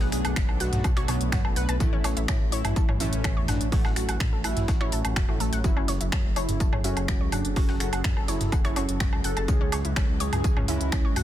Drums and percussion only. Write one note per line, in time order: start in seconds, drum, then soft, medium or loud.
0.01 snare medium
0.12 finger snap soft
0.12 open hi-hat loud
0.12 tambourine medium
0.25 closed hi-hat soft
0.25 low woodblock medium
0.36 finger snap loud
0.36 kick loud
0.36 snare loud
0.36 closed hi-hat soft
0.36 tambourine medium
0.49 low woodblock medium
0.60 snare soft
0.60 open hi-hat loud
0.60 tambourine medium
0.73 snare soft
0.73 closed hi-hat soft
0.73 mid tom medium
0.84 kick loud
0.84 closed hi-hat soft
0.84 tambourine medium
0.84 low woodblock medium
0.97 finger snap soft
0.97 closed hi-hat soft
1.08 open hi-hat loud
1.08 tambourine medium
1.08 low woodblock medium
1.21 closed hi-hat soft
1.32 finger snap loud
1.32 kick loud
1.32 snare loud
1.32 closed hi-hat soft
1.32 mid tom medium
1.32 tambourine medium
1.45 low woodblock medium
1.56 open hi-hat loud
1.56 tambourine medium
1.69 closed hi-hat soft
1.69 low woodblock medium
1.80 kick loud
1.80 closed hi-hat soft
1.80 tambourine medium
2.04 snare soft
2.04 open hi-hat loud
2.04 tambourine medium
2.04 low woodblock medium
2.17 closed hi-hat soft
2.28 finger snap loud
2.28 kick loud
2.28 snare loud
2.28 closed hi-hat soft
2.28 tambourine medium
2.28 low woodblock medium
2.52 open hi-hat loud
2.52 tambourine medium
2.65 closed hi-hat soft
2.65 mid tom medium
2.65 low woodblock medium
2.76 kick loud
2.76 closed hi-hat soft
2.76 tambourine medium
2.89 mid tom medium
2.89 low woodblock medium
3.00 open hi-hat loud
3.00 tambourine medium
3.13 closed hi-hat soft
3.24 finger snap loud
3.24 kick loud
3.24 closed hi-hat soft
3.24 tambourine medium
3.24 low woodblock medium
3.48 snare loud
3.48 mid tom medium
3.48 open hi-hat medium
3.48 tambourine medium
3.48 low woodblock soft
3.61 closed hi-hat soft
3.72 kick loud
3.72 closed hi-hat soft
3.72 open hi-hat medium
3.85 snare medium
3.85 low woodblock medium
3.96 finger snap soft
3.96 open hi-hat loud
3.96 tambourine medium
4.09 closed hi-hat soft
4.09 low woodblock medium
4.20 finger snap loud
4.20 kick loud
4.20 snare loud
4.20 closed hi-hat soft
4.20 tambourine medium
4.44 snare soft
4.44 open hi-hat loud
4.44 tambourine medium
4.44 low woodblock medium
4.57 snare soft
4.57 closed hi-hat soft
4.57 mid tom medium
4.68 kick loud
4.68 snare loud
4.68 closed hi-hat soft
4.68 tambourine medium
4.68 low woodblock soft
4.81 finger snap soft
4.92 open hi-hat loud
4.92 tambourine medium
5.05 closed hi-hat soft
5.05 low woodblock medium
5.16 finger snap loud
5.16 kick loud
5.16 snare loud
5.16 closed hi-hat soft
5.16 mid tom medium
5.16 tambourine medium
5.29 low woodblock soft
5.40 open hi-hat medium
5.40 tambourine medium
5.53 closed hi-hat soft
5.64 kick loud
5.64 closed hi-hat soft
5.64 tambourine medium
5.77 low woodblock medium
5.88 snare medium
5.88 open hi-hat loud
5.88 tambourine medium
6.01 closed hi-hat soft
6.12 finger snap loud
6.12 kick loud
6.12 snare loud
6.12 closed hi-hat soft
6.12 tambourine medium
6.12 low woodblock medium
6.36 open hi-hat loud
6.36 tambourine medium
6.36 low woodblock soft
6.49 closed hi-hat medium
6.49 closed hi-hat soft
6.49 mid tom medium
6.60 kick loud
6.60 closed hi-hat soft
6.60 tambourine medium
6.73 mid tom medium
6.73 low woodblock medium
6.84 open hi-hat loud
6.84 tambourine medium
6.97 closed hi-hat soft
6.97 low woodblock medium
7.08 finger snap loud
7.08 kick loud
7.08 snare loud
7.08 closed hi-hat soft
7.08 tambourine medium
7.32 mid tom medium
7.32 open hi-hat loud
7.32 tambourine medium
7.32 low woodblock medium
7.45 closed hi-hat soft
7.56 kick loud
7.56 closed hi-hat soft
7.56 open hi-hat medium
7.56 low woodblock medium
7.69 snare medium
7.80 finger snap soft
7.80 open hi-hat loud
7.80 tambourine medium
7.93 closed hi-hat soft
7.93 low woodblock medium
8.04 finger snap loud
8.04 kick loud
8.04 snare loud
8.04 closed hi-hat soft
8.04 tambourine medium
8.17 low woodblock medium
8.28 snare soft
8.28 open hi-hat loud
8.28 tambourine medium
8.41 snare soft
8.41 closed hi-hat soft
8.41 mid tom medium
8.52 kick loud
8.52 closed hi-hat soft
8.52 tambourine medium
8.52 low woodblock medium
8.65 finger snap soft
8.65 closed hi-hat soft
8.76 open hi-hat loud
8.76 tambourine medium
8.76 low woodblock medium
8.89 closed hi-hat soft
9.00 finger snap loud
9.00 kick loud
9.00 snare loud
9.00 closed hi-hat soft
9.00 mid tom medium
9.00 tambourine medium
9.13 low woodblock medium
9.24 open hi-hat loud
9.24 tambourine medium
9.37 closed hi-hat soft
9.37 low woodblock medium
9.48 kick loud
9.48 closed hi-hat soft
9.48 tambourine medium
9.72 snare soft
9.72 open hi-hat loud
9.72 tambourine medium
9.72 low woodblock medium
9.85 closed hi-hat soft
9.96 finger snap loud
9.96 kick loud
9.96 snare loud
9.96 closed hi-hat soft
9.96 tambourine medium
9.96 low woodblock medium
10.20 open hi-hat loud
10.20 tambourine medium
10.33 closed hi-hat soft
10.33 mid tom medium
10.33 low woodblock medium
10.44 kick loud
10.44 closed hi-hat soft
10.44 tambourine medium
10.57 mid tom medium
10.57 low woodblock medium
10.68 open hi-hat loud
10.68 tambourine medium
10.81 closed hi-hat soft
10.92 finger snap loud
10.92 kick loud
10.92 snare loud
10.92 closed hi-hat soft
10.92 tambourine medium
10.92 low woodblock medium
11.16 mid tom medium
11.16 open hi-hat loud
11.16 tambourine medium
11.16 low woodblock medium